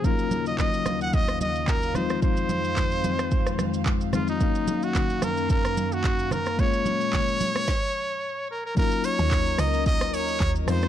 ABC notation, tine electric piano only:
X:1
M:4/4
L:1/8
Q:"Swing 16ths" 1/4=110
K:Ebdor
V:1 name="Tine electric piano"
[F,G,B,DEF]6- [F,G,B,DEF] [F,A,CEF]- | [F,A,CEF]6- [F,A,CEF] [F,A,CEF] | [G,B,DEf]8 | [A,B,DF]4 z4 |
[G,B,DEF]6- [G,B,DEF] [F,=G,A,CEF] |]